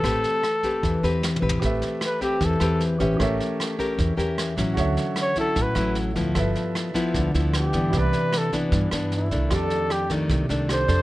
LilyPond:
<<
  \new Staff \with { instrumentName = "Grand piano" } { \time 4/4 \key d \dorian \tempo 4 = 152 r1 | <g' b' e''>2.~ <g' b' e''>8 <g' b' c'' e''>8 | <g' bes' cis'' e''>1 | <fis' a' cis'' e''>1 |
<a' b' e''>1 | <e' g' b' d''>1 | <g' a' d''>2. <g' a' d''>4 | }
  \new Staff \with { instrumentName = "Flugelhorn" } { \time 4/4 \key d \dorian a'2. r4 | r4 b'8 g'8 a'4 r4 | r1 | r4 cis''8 a'8 b'4 r4 |
r2. g'4 | b'4 a'8 r4. e'4 | a'4 g'8 r4. c''4 | }
  \new Staff \with { instrumentName = "Nylon-string guitar" } { \time 4/4 \key d \dorian << { <c' g' b'>4 r8 <c' g' b'>4 <c' g' b'>4 <c' g' b'>8~ | <c' g' b'>4 r8 <c' g' b'>4 <c' g' b'>4 <cis' g'>8~ | <cis' g'>4. <cis' g' bes'>4 <cis' g' bes'>4 <fis cis' e'>8~ | <fis cis' e'>4. <fis cis' e'>4 <fis cis' e'>4 <f b e'>8~ |
<f b e'>4. <f b e'>4 <f b e'>4 <e b d'>8~ | <e b d'>4. <e b d'>4 <e b d'>4 <dis a d'>8~ | <dis a d'>4. <ees a d'>4 <ees a d'>4 <d' a' c''>8 | } \\ { a2 e2 | a2 e2 | a2 e2 | d2 a,2 |
g,2 d2 | c2 g,2 | f,2 c2 | } >> }
  \new Staff \with { instrumentName = "Upright bass" } { \clef bass \time 4/4 \key d \dorian a,,8 r4. e,8 e,4 a,,8 | a,,8 r4. e,8 e,4 a,,8 | a,,8 r4. e,8 e,4 a,,8 | d,8 r4. a,,8 a,,4 d,8 |
g,,8 r4. d,8 d,4 g,8 | c,8 r4. g,8 g,4 c,8 | f,8 r4. c,8 c,4 f,8 | }
  \new DrumStaff \with { instrumentName = "Drums" } \drummode { \time 4/4 <bd ss sn>8 sn8 <ss sn>8 <bd sn>8 <bd sn>8 sn8 \tuplet 3/2 { sn8 toml8 tomfh8 } | <bd sn>8 sn8 <ss sn>8 <bd sn>8 <bd sn>8 <ss sn>8 sn8 <bd sn>8 | <bd ss sn>8 sn8 <ss sn>8 <bd sn>8 <bd sn>8 sn8 <ss sn>8 <bd sn>8 | <bd sn>8 sn8 <ss sn>8 <bd sn>8 <bd sn>8 <ss sn>8 sn8 <bd sn>8 |
<bd ss sn>8 sn8 <ss sn>8 <bd sn>8 <bd sn>8 sn8 <ss sn>8 <bd sn>8 | <bd sn>8 sn8 <ss sn>8 <bd sn>8 <bd sn>8 <ss sn>8 sn8 <bd sn>8 | <bd ss sn>8 sn8 <ss sn>8 <bd sn>8 <bd sn>8 sn8 <ss sn>8 <bd sn>8 | }
>>